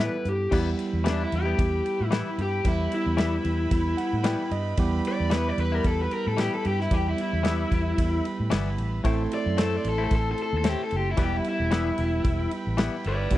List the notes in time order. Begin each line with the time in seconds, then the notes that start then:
Already playing: E3 G3 B3 E4 G4 A4 B4 E5 G5 B5
0.00 G3 B3 E4 B4, snare
0.25 G2 G4, closed hi-hat
0.51 E2 E3 G3 B3 E4 G4 B4 E5 G5 B5, kick, crash
0.79 ride
0.93 E2
1.04 E3 G3 B3 E4, snare, ride
1.10 D4
1.23 E4
1.32 E2 G4, ride
1.45 G3 B3 E4
1.59 E2, kick, ride
1.86 ride
2.01 A2
2.06 E4
2.11 E3 G3 B3 E4, snare, ride
2.38 G2 G4, ride
2.64 E2 G3 B3 E4 G4, kick, ride
2.92 E4, ride
3.06 E2
3.17 E3 G3 B3 E4, snare, ride
3.45 E2, ride
3.71 E2, kick, ride
3.97 F#5, ride
4.13 A2
4.24 E3 G3 B3 E4 G5, snare, ride
4.51 G2 D#5, ride
4.77 E2 G3 B3 E4 G4, kick, ride
5.05 D5, ride
5.20 E2
5.30 E3 G3 B3 E4, snare, ride
5.35 B4
5.49 D5
5.58 E2 B4, ride
5.72 G3 B3 E4 A#4
5.84 E2 A4, kick, ride
6.02 B4
6.11 A#4, ride
6.27 A2 A4
6.37 E3 G3 B3 E4 G4, snare, ride
6.54 A4
6.65 G2 G4, ride
6.81 E4, snare
6.91 E2 G3 B3 E4 G4, kick, ride
7.09 E4
7.18 E4, ride
7.33 E2
7.43 E3 G3 B3 E4, snare, ride
7.71 E2, kick, ride
7.98 E2, kick, ride
8.25 ride
8.40 A2
8.50 G1 E3 G3 B3 E4, snare, ride
8.78 A1, ride
9.04 A1 A2 A3 C4 E4 A4 C5 A5 C6, kick, ride
9.32 D5, ride
9.46 F#2
9.57 A2 A3 C4 E4, snare, ride
9.62 A4
9.77 D5
9.84 A1, ride
9.89 A4
9.98 A3 C4 E4
10.04 A4
10.11 A1, kick, ride
10.16 A4
10.32 A4
10.38 ride
10.42 A4
10.53 D#2
10.58 A4
10.64 A2 A3 C4 E4, snare, ride
10.69 G4
10.84 A4
10.91 F#1, ride
10.96 G4
11.11 E4
11.17 E1 E3 G3 B3 E4 G4 B4 G5 B5, kick, ride
11.22 G4
11.37 E4
11.44 E4, ride
11.60 E1
11.71 E3 G3 B3 E4, snare, ride
11.98 E1, ride
12.24 E1, kick, ride
12.51 ride
12.67 A1
12.77 E3 G3 B3 E4, snare, ride
13.04 G1 B4 D5, ride
13.30 E1 G3 B3 E4 G4, kick, ride
13.35 D4